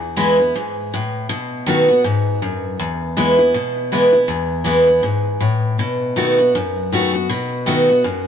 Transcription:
0.00 0.52 E2 loud
0.16 0.38 E3 medium
0.16 0.38 G#3 loud
0.16 0.39 B3 medium
0.16 0.38 E4 loud
0.39 0.55 B3 medium
0.39 0.54 E4 medium
0.55 0.91 G#2 medium
0.94 1.29 A2 medium
1.29 2.02 B2 loud
1.67 1.88 D#3 loud
1.67 1.89 A3 medium
1.67 1.89 B3 loud
1.67 1.87 F#4 loud
1.88 2.05 B3 medium
1.88 2.03 F#4 medium
2.04 2.41 G#2 loud
2.42 2.78 F#2 medium
2.80 3.52 E2 medium
3.17 3.39 E3 medium
3.17 3.39 G#3 loud
3.17 3.39 B3 loud
3.17 3.37 E4 loud
3.38 3.55 B3 soft
3.38 3.54 E4 medium
3.54 4.27 B2 medium
3.92 4.14 E3 medium
3.92 4.14 G#3 medium
3.92 4.13 B3 medium
3.92 4.11 E4 medium
4.12 4.29 B3 medium
4.12 4.28 E4 medium
4.28 5.01 E2 loud
4.64 4.87 E3 medium
4.64 4.88 G#3 medium
4.64 4.87 B3 medium
4.64 4.85 E4 loud
4.86 5.04 B3 soft
4.86 5.03 E4 medium
5.03 5.40 G#2 medium
5.40 5.78 A2 medium
5.79 6.52 B2 medium
6.16 6.38 D#3 medium
6.16 6.39 A3 medium
6.16 6.39 B3 medium
6.16 6.37 F#4 loud
6.38 6.55 B3 medium
6.38 6.54 F#4 medium
6.55 7.27 F#2 loud
6.92 7.14 D#3 medium
6.92 7.15 A3 medium
6.92 7.14 B3 medium
6.92 7.12 F#4 loud
7.13 7.30 B3 medium
7.13 7.29 F#4 medium
7.29 8.02 B2 medium
7.66 7.89 D#3 loud
7.66 7.89 A3 medium
7.66 7.89 B3 loud
7.66 7.88 F#4 loud
7.89 8.05 B3 soft
7.89 8.04 F#4 medium
8.04 8.27 F#2 loud

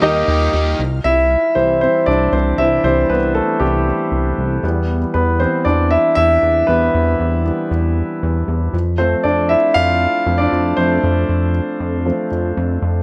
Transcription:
0.00 0.24 D#2 medium
0.00 0.76 D#3 medium
0.00 0.81 D#3 medium
0.00 0.76 G3 medium
0.00 0.76 A#3 medium
0.00 0.02 D#4 medium
0.00 0.66 D#4 medium
0.00 0.28 D#4 medium
0.00 0.78 F4 medium
0.00 0.02 G4 medium
0.00 0.28 G4 medium
0.00 0.67 G4 medium
0.00 0.02 A#4 medium
0.00 0.67 A#4 medium
0.00 0.03 D#5 medium
0.00 0.67 D#5 medium
0.05 0.27 A#3 soft
0.27 0.49 D#2 loud
0.27 0.53 D#3 medium
0.27 0.54 A#3 medium
0.27 0.54 D#4 medium
0.27 0.52 G4 medium
0.53 0.75 D#2 medium
0.53 0.81 A#3 soft
0.53 0.80 D#4 soft
0.53 0.79 G4 medium
0.79 1.00 C2 loud
1.04 1.36 C2 medium
1.04 1.53 E4 medium
1.04 1.58 E5 loud
1.55 1.88 C2 medium
1.55 2.29 E3 soft
1.55 2.29 G3 soft
1.55 1.81 C4 medium
1.55 1.80 C5 medium
1.81 2.06 C4 medium
1.81 2.08 C5 medium
2.06 2.28 C2 medium
2.06 2.32 D4 medium
2.06 2.33 D5 medium
2.33 2.54 C2 loud
2.33 2.58 C4 medium
2.33 2.59 C5 medium
2.58 2.79 C2 medium
2.58 2.82 E3 soft
2.58 2.82 G3 soft
2.58 2.83 C4 soft
2.58 2.83 E4 medium
2.58 2.85 E5 medium
2.84 3.05 C2 loud
2.84 3.19 E3 soft
2.84 3.19 G3 soft
2.84 3.09 C4 medium
2.84 3.11 C5 medium
3.10 3.41 C2 medium
3.10 3.17 B3 medium
3.10 3.15 B4 medium
3.35 3.60 A3 medium
3.35 3.62 A4 medium
3.60 3.92 C2 medium
3.60 3.84 E3 soft
3.60 4.60 G3 soft
3.60 3.84 C4 soft
3.60 4.59 G4 medium
4.12 4.33 C2 medium
4.38 4.59 C2 medium
4.63 5.06 E2 medium
4.63 4.98 E3 soft
4.63 4.98 G3 soft
4.63 4.98 B3 medium
5.14 5.46 E2 medium
5.14 5.39 B3 medium
5.14 5.41 B4 medium
5.40 5.63 E3 soft
5.40 5.64 G3 soft
5.40 5.64 B3 soft
5.40 5.65 C4 medium
5.40 5.67 C5 medium
5.65 5.97 E2 medium
5.65 5.90 D4 medium
5.65 5.92 D5 medium
5.91 5.98 E4 medium
5.91 5.96 E5 medium
6.15 6.38 E2 medium
6.15 6.65 E4 medium
6.15 6.69 E5 loud
6.43 6.64 E2 medium
6.67 6.90 E2 medium
6.67 7.41 E3 soft
6.67 7.41 G3 soft
6.67 7.44 B3 medium
6.67 8.69 B4 medium
6.95 7.15 E2 loud
7.20 7.51 E2 medium
7.44 7.68 E3 soft
7.44 7.68 G3 soft
7.44 7.68 B3 soft
7.71 8.03 E2 medium
8.23 8.44 E2 loud
8.48 8.69 E2 medium
8.73 9.15 F2 medium
8.98 9.71 F3 soft
8.98 9.72 A3 soft
8.98 9.72 C4 medium
8.98 9.25 C5 medium
9.24 9.56 F2 medium
9.24 9.49 D4 medium
9.24 9.50 D5 medium
9.49 9.56 E4 medium
9.49 9.55 E5 medium
9.74 10.07 F2 medium
9.74 10.36 F4 medium
9.74 10.41 F5 loud
10.26 10.48 F2 medium
10.26 10.50 F3 soft
10.26 10.50 A3 soft
10.26 10.50 C4 soft
10.38 10.76 D4 medium
10.38 10.78 D5 medium
10.52 10.73 F2 medium
10.77 10.99 F2 medium
10.77 11.51 F3 soft
10.77 11.51 A3 soft
10.77 12.05 C4 medium
10.77 12.27 C5 medium
11.04 11.25 F2 loud
11.29 11.61 F2 medium
11.80 12.12 F2 medium
12.06 12.29 F3 soft
12.06 12.29 A3 soft
12.06 12.30 C4 soft
12.32 12.53 F2 medium
12.57 12.78 F2 loud
12.82 13.03 F2 medium

